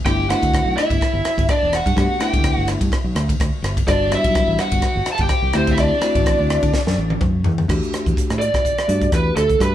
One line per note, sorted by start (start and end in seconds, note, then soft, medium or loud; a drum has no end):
0.05 0.33 G1 medium
0.05 0.24 A3 medium
0.05 0.24 B3 medium
0.05 0.25 D4 medium
0.05 0.25 E4 medium
0.05 0.28 G4 medium
0.05 0.29 G5 medium
0.05 kick medium
0.05 cross-stick medium
0.05 ride medium
0.29 1.03 A3 medium
0.29 1.03 B3 medium
0.29 1.04 D4 medium
0.29 1.04 E4 medium
0.29 0.75 F#4 medium
0.29 0.74 F#5 medium
0.29 cross-stick medium
0.29 ride medium
0.42 0.60 D2 medium
0.42 kick medium
0.42 ride medium
0.54 kick medium
0.54 cross-stick medium
0.54 ride medium
0.66 0.74 B1 medium
0.77 1.45 E4 medium
0.77 1.49 E5 medium
0.77 muted fingered electric bass stroke soft
0.77 cross-stick medium
0.77 ride medium
0.90 0.98 G1 medium
0.90 kick medium
0.90 ride medium
1.01 kick medium
1.01 cross-stick medium
1.01 ride medium
1.13 1.22 G1 medium
1.25 muted fingered electric bass stroke soft
1.25 cross-stick medium
1.25 ride medium
1.37 1.46 G1 medium
1.37 kick medium
1.37 ride medium
1.49 1.72 D4 medium
1.49 1.74 D5 medium
1.49 kick loud
1.49 cross-stick medium
1.49 ride medium
1.63 1.80 E1 medium
1.73 2.19 F#4 medium
1.73 2.21 F#5 medium
1.73 cross-stick medium
1.73 ride medium
1.86 1.94 G2 medium
1.86 kick medium
1.86 ride medium
1.96 2.06 G2 medium
1.96 2.15 A3 medium
1.96 2.16 B3 medium
1.96 2.16 D4 medium
1.96 2.16 G4 medium
1.96 kick medium
1.96 cross-stick medium
1.96 ride medium
2.19 2.93 A3 medium
2.19 2.94 B3 medium
2.19 2.94 D4 medium
2.19 2.94 E4 medium
2.19 2.66 G5 medium
2.19 muted fingered electric bass stroke soft
2.19 cross-stick medium
2.19 ride medium
2.25 2.67 G4 medium
2.33 2.51 D2 medium
2.33 kick medium
2.33 ride medium
2.44 kick loud
2.44 cross-stick medium
2.44 ride medium
2.57 2.75 G1 medium
2.68 cross-stick medium
2.68 ride medium
2.81 2.89 G2 medium
2.81 kick medium
2.81 ride medium
2.92 muted fingered electric bass stroke soft
2.92 kick medium
2.92 cross-stick medium
2.92 ride medium
3.04 3.13 B1 medium
3.15 3.33 D2 loud
3.15 cross-stick medium
3.15 ride medium
3.29 kick medium
3.29 ride medium
3.40 3.50 D2 medium
3.40 kick loud
3.40 cross-stick medium
3.40 ride medium
3.62 3.81 G1 medium
3.62 cross-stick medium
3.62 ride medium
3.77 kick medium
3.77 ride medium
3.87 4.15 G1 medium
3.87 4.06 G3 medium
3.87 4.06 B3 medium
3.87 4.07 D4 medium
3.87 4.11 D4 medium
3.87 4.07 F#4 medium
3.87 4.12 D5 medium
3.87 kick medium
3.87 cross-stick medium
3.87 ride medium
4.10 4.84 G3 medium
4.10 4.84 B3 medium
4.10 4.85 D4 medium
4.10 4.85 F#4 medium
4.10 4.62 E5 loud
4.10 cross-stick medium
4.10 ride medium
4.15 4.58 E4 medium
4.24 4.42 B1 medium
4.24 kick medium
4.24 ride medium
4.35 kick loud
4.35 cross-stick medium
4.35 ride medium
4.48 4.56 A1 medium
4.58 5.10 F#4 medium
4.58 5.09 F#5 medium
4.58 muted fingered electric bass stroke soft
4.58 cross-stick medium
4.58 ride medium
4.72 4.80 G1 medium
4.72 kick medium
4.72 ride medium
4.82 kick medium
4.82 cross-stick medium
4.82 ride medium
4.95 5.04 G1 medium
5.06 muted fingered electric bass stroke soft
5.06 cross-stick medium
5.06 ride medium
5.12 5.21 A4 medium
5.12 5.20 A5 medium
5.18 5.28 G1 medium
5.18 kick medium
5.18 ride medium
5.22 5.54 G4 medium
5.22 5.53 G5 medium
5.29 kick loud
5.29 cross-stick medium
5.29 ride medium
5.42 5.51 C2 medium
5.53 5.90 D2 medium
5.53 5.93 A3 medium
5.53 5.94 C4 medium
5.53 5.94 E4 medium
5.53 5.95 G4 medium
5.53 5.73 C5 medium
5.53 cross-stick medium
5.53 ride medium
5.58 5.73 C4 medium
5.67 kick medium
5.67 ride medium
5.71 5.79 E4 medium
5.71 5.78 E5 medium
5.77 7.19 D5 medium
5.77 kick medium
5.77 cross-stick medium
5.77 ride medium
5.83 7.20 D4 medium
6.01 6.75 A3 medium
6.01 6.75 C4 medium
6.01 6.76 E4 medium
6.01 6.76 F#4 medium
6.01 muted fingered electric bass stroke soft
6.01 cross-stick medium
6.01 ride medium
6.15 6.33 A1 medium
6.15 kick medium
6.15 ride medium
6.26 kick loud
6.26 cross-stick medium
6.26 ride medium
6.39 6.57 D2 medium
6.50 cross-stick medium
6.50 ride medium
6.62 6.71 D3 medium
6.62 kick medium
6.62 ride medium
6.73 kick medium
6.73 snare medium
6.87 6.95 F#2 medium
6.87 snare medium
6.98 7.16 A1 medium
7.10 high tom medium
7.21 7.43 F#2 medium
7.21 kick loud
7.21 mid tom medium
7.44 7.67 E2 medium
7.44 floor tom medium
7.58 floor tom medium
7.68 7.79 E2 medium
7.68 8.43 A3 medium
7.68 8.43 D4 medium
7.68 8.43 F#4 medium
7.68 8.43 G4 medium
7.68 kick medium
7.68 cross-stick medium
7.68 crash medium
7.83 closed hi-hat soft
7.92 muted fingered electric bass stroke soft
7.92 cross-stick medium
7.92 closed hi-hat medium
8.06 8.15 E2 medium
8.06 kick medium
8.06 closed hi-hat soft
8.17 kick medium
8.17 closed hi-hat medium
8.30 8.48 A2 medium
8.30 cross-stick medium
8.30 closed hi-hat soft
8.39 9.08 D5 medium
8.39 closed hi-hat medium
8.54 8.72 B1 medium
8.54 kick medium
8.54 cross-stick medium
8.54 closed hi-hat soft
8.65 kick medium
8.65 closed hi-hat medium
8.78 cross-stick medium
8.78 closed hi-hat soft
8.88 9.07 G2 medium
8.88 9.44 A3 medium
8.88 9.44 D4 medium
8.88 9.45 F#4 medium
8.88 9.45 G4 medium
8.88 closed hi-hat medium
9.01 kick medium
9.01 closed hi-hat soft
9.12 9.30 E2 medium
9.12 9.36 B4 medium
9.12 kick loud
9.12 cross-stick medium
9.12 closed hi-hat medium
9.36 9.54 D2 medium
9.36 9.62 A4 medium
9.36 cross-stick medium
9.36 closed hi-hat medium
9.49 kick medium
9.49 closed hi-hat soft
9.59 9.75 G2 loud
9.59 9.75 A3 medium
9.59 9.75 D4 medium
9.59 9.75 F#4 medium
9.59 9.75 G4 medium
9.59 9.75 B4 medium
9.59 kick medium
9.59 cross-stick medium
9.59 closed hi-hat medium